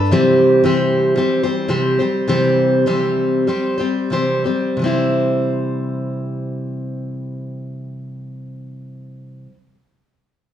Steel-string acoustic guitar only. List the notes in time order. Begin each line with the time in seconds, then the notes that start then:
Already playing: D4 A4 B4
0.11 C3 E3 G3 C4 G4 C5
0.64 C3 E3 G3 C4 G4 C5
1.16 G3 C4 G4 C5
1.43 G3 C4 G4 C5
1.68 C3 E3 G3 C4 G4 C5
1.99 G3 C4 G4 C5
2.28 C3 E3 G3 C4 G4 C5
2.86 C3 E3 G3 C4 G4 C5
3.47 G3 C4 G4 C5
3.78 G3 C4 G4 C5
4.10 C3 E3 G3 C4 G4 C5
4.44 G3 C4 G4 C5
4.77 C3 E3
4.82 G3 C4 E4
4.87 C5